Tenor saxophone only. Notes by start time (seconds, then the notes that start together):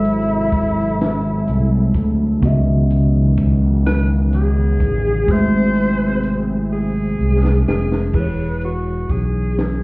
Already playing: E4
3.86 B4
4.35 G#4
5.31 C5
6.73 G#4
7.68 G#4
8.15 B4
8.64 F#4
9.11 G#4
9.59 G#4